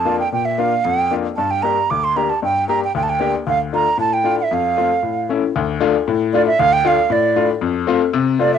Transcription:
Already playing: F2 A5
0.05 A#3 D4 F4
0.19 G5
0.32 A#2 G5
0.45 E5
0.58 A#3 D4 F4 F5
0.85 F2 G5
1.11 A#3 D4 F4
1.37 G2 A5
1.51 G5
1.62 A#3 D4 G4 A#5
1.90 D2 D6
2.04 C6
2.16 A#3 D4 G4 A#5
2.30 A5
2.42 G2 G5
2.68 A#3 D4 G4 A#5
2.84 G5
2.95 D2 G5
3.03 A5
3.09 G5
3.20 A#3 D4 G4
3.47 D2 F5
3.73 A3 D4 F4 A#5
3.98 A2 A5
4.13 G5
4.24 A3 D4 F4
4.40 E5
4.51 F2 F5
4.77 A3 C4 F4
5.03 A2
5.29 A3 C#4 E4
5.56 D2
5.81 A3 D4 F4
6.08 A2
6.33 A3 D4 F4 D5
6.46 E5
6.59 D2 F5
6.73 G5
6.84 A3 D4 F4 F5
7.10 A2 D5
7.36 A3 D4 F4
7.61 F2
7.87 A3 C4 F4
8.13 C3
8.39 A3 C4 F4 D5
8.54 E5

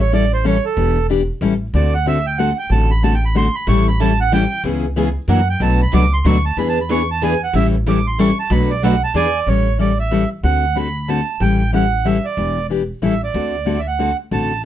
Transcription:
Already playing: A1
0.01 C#5
0.12 E3 G3 C#4 E4 A4 D5
0.34 C5
0.44 E3 G3 C#4 E4 A4 C#5
0.65 A4
0.77 E1 E3 B3 D4 G4
1.09 E3 B3 D4 G4
1.41 A1 E3 G3 C#4 E4 A4
1.74 D2 D3 A3 C4 F#4 A4 D5
1.94 F#5
2.06 D3 A3 C4 F#4 A4 E5
2.27 G5
2.38 D3 A3 C4 F#4 A4 F#5
2.59 G5
2.70 A1 D3 A3 C4 F#4 A4 A5
2.91 B5
3.03 D3 A3 C4 F#4 A4 A5
3.15 G5
3.25 B5
3.35 D3 A3 C4 F#4 A4 C6
3.55 B5
3.67 A1 E3 G3 C#4 E4 A4 C#6
3.88 B5
4.00 E3 G3 C#4 E4 A4 A5
4.21 F#5
4.32 E3 G3 C#4 E4 A4 G5
4.64 C#2 C#3 E3 G#3 B3 C#4 E4 G#4
4.96 C#3 E3 G#3 B3 C#4 E4 G#4
5.28 F#2 E3 F#3 A#3 D4 E4 F#4 A#4 F#5
5.50 G5
5.60 B1 B2 F#3 A3 D4 F#4 B4 A5
5.82 B5
5.93 C#2 B2 F#3 A3 D4 F#4 B4 D6
6.14 C6
6.24 D2 B2 F#3 A3 D4 F#4 B4 C#6
6.46 A5
6.57 E2 E3 B3 D4 G#4 B4 B5
6.69 A5
6.81 B5
6.90 E3 B3 D4 G#4 B4 C#6
7.11 A5
7.22 E3 B3 D4 G#4 B4 G#5
7.44 F#5
7.53 A1 E3 G3 C#4 E4 A4 E5
7.86 E3 G3 C#4 E4 A4 D6
8.07 C6
8.19 E3 G3 C#4 E4 A4 C#6
8.40 A5
8.50 B1 B2 F#3 A3 D4 F#4 B4 B5
8.71 D5
8.83 B2 F#3 A3 D4 F#4 B4 F#5
9.04 A5
9.14 E2 E3 B3 D4 G#4 B4 D5 G#5
9.47 A1 E3 G3 C#4 E4 A4 C#5
9.78 E3 G3 C#4 E4 A4 D5
10.00 E5
10.11 E3 G3 C#4 E4 A4
10.43 D2 D3 A3 C4 F#4 A4 F#5
10.75 D3 A3 C4 F#4 A4 B5
11.08 D3 A3 C4 F#4 A4 A5
11.40 A1 E3 G3 C#4 E4 A4 G5
11.73 E3 G3 C#4 E4 A4 F#5
12.05 E3 G3 C#4 E4 A4 E5
12.25 D5
12.37 E1 E3 B3 D4 G4
12.70 E3 B3 D4 G4
13.02 A1 E3 G3 C#4 E4 A4 E5
13.24 D5
13.34 D2 D3 A3 C4 F#4 A4
13.65 D3 A3 C4 F#4 A4
13.79 E5
13.88 F#5
13.99 D3 A3 C4 F#4 A4
14.31 A1 D3 A3 C4 F#4 A4 A5

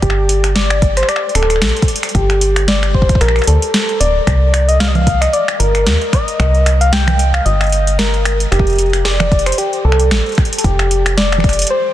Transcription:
0.02 G1 G4, kick, closed hi-hat
0.10 finger snap
0.29 closed hi-hat
0.44 finger snap, closed hi-hat
0.55 D5, snare, closed hi-hat
0.70 finger snap, closed hi-hat
0.82 kick, closed hi-hat
0.97 C5, finger snap, closed hi-hat
1.03 finger snap
1.09 D5, finger snap, closed hi-hat
1.16 finger snap
1.29 closed hi-hat
1.35 D1 A4, finger snap, closed hi-hat
1.43 finger snap
1.50 finger snap, closed hi-hat
1.56 finger snap
1.62 A#1, finger snap, snare, closed hi-hat
1.69 closed hi-hat
1.77 closed hi-hat
1.82 kick, closed hi-hat
1.88 closed hi-hat
1.96 closed hi-hat
2.03 finger snap, closed hi-hat
2.09 closed hi-hat
2.15 G1 G4, kick, closed hi-hat
2.30 finger snap, closed hi-hat
2.41 closed hi-hat
2.56 finger snap, closed hi-hat
2.68 D5, snare, closed hi-hat
2.83 finger snap, closed hi-hat
2.94 C5, kick
3.02 kick
3.09 kick, closed hi-hat
3.15 kick
3.21 A#1 A#4, finger snap, closed hi-hat
3.28 finger snap
3.36 finger snap, closed hi-hat
3.39 finger snap, closed hi-hat
3.44 A4, closed hi-hat
3.47 D2, closed hi-hat
3.62 closed hi-hat
3.74 finger snap, snare, closed hi-hat
3.89 closed hi-hat
4.00 D1 D5, closed hi-hat
4.27 C2, finger snap, kick, closed hi-hat
4.54 finger snap, closed hi-hat
4.68 D#5, closed hi-hat
4.80 F5, finger snap, snare, closed hi-hat
4.88 D#5
4.95 F5, closed hi-hat, low conga
4.98 low conga
5.01 low conga
5.04 closed hi-hat, low conga
5.07 kick, low conga
5.11 low conga
5.14 low conga
5.18 D#5, finger snap, closed hi-hat, low conga
5.33 D5, closed hi-hat
5.48 finger snap, closed hi-hat
5.60 G1 A#4, closed hi-hat
5.75 finger snap, closed hi-hat
5.86 D#2, snare, closed hi-hat
6.01 closed hi-hat
6.13 D#5, finger snap, kick, closed hi-hat
6.28 closed hi-hat
6.40 C2, finger snap, kick, closed hi-hat
6.55 closed hi-hat
6.66 finger snap, closed hi-hat
6.81 F5, closed hi-hat
6.92 G5, snare, closed hi-hat
7.08 finger snap, closed hi-hat, low conga
7.19 closed hi-hat
7.34 F5, finger snap
7.45 G1 D#5, closed hi-hat
7.61 finger snap, closed hi-hat
7.64 closed hi-hat
7.67 closed hi-hat
7.69 closed hi-hat
7.72 closed hi-hat
7.87 closed hi-hat
7.99 A#4, finger snap, snare, closed hi-hat
8.14 closed hi-hat
8.25 finger snap, closed hi-hat
8.40 closed hi-hat
8.52 F1 G4, finger snap, closed hi-hat
8.59 kick
8.67 closed hi-hat
8.70 closed hi-hat
8.73 closed hi-hat
8.76 closed hi-hat
8.79 closed hi-hat
8.82 closed hi-hat
8.86 closed hi-hat
8.90 finger snap, closed hi-hat
8.93 closed hi-hat
9.05 D5, snare, closed hi-hat
9.20 finger snap, closed hi-hat, low conga
9.32 kick, closed hi-hat
9.39 closed hi-hat
9.46 C5, finger snap, closed hi-hat
9.52 closed hi-hat
9.58 G4, closed hi-hat
9.73 closed hi-hat
9.85 C2 A4
9.92 finger snap
10.00 closed hi-hat
10.11 A1, finger snap, snare, closed hi-hat
10.26 closed hi-hat
10.29 closed hi-hat
10.32 closed hi-hat
10.35 finger snap, kick, closed hi-hat
10.38 closed hi-hat
10.45 closed hi-hat
10.53 closed hi-hat
10.58 A4, closed hi-hat
10.64 F1 G4, kick, closed hi-hat
10.79 finger snap, closed hi-hat
10.91 closed hi-hat
11.06 finger snap, closed hi-hat
11.17 D5, snare, closed hi-hat
11.32 finger snap, closed hi-hat
11.38 finger snap, low conga
11.44 kick, closed hi-hat
11.49 finger snap, closed hi-hat
11.53 closed hi-hat
11.59 closed hi-hat
11.62 closed hi-hat
11.65 closed hi-hat
11.67 C5, closed hi-hat

